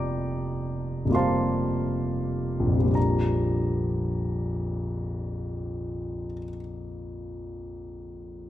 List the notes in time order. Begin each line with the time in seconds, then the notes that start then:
Already playing: F1 G3 A#3 F4 G4 D5 D#5 G5 A5 A#5 C6 D6 D#6
1.05 F1 G3
1.10 A#3 F4 G4
1.15 C5 F5 A5 C6
2.60 A#1
2.66 F2
2.72 F3
2.77 G3
2.84 A#3
2.90 D4
2.95 A#5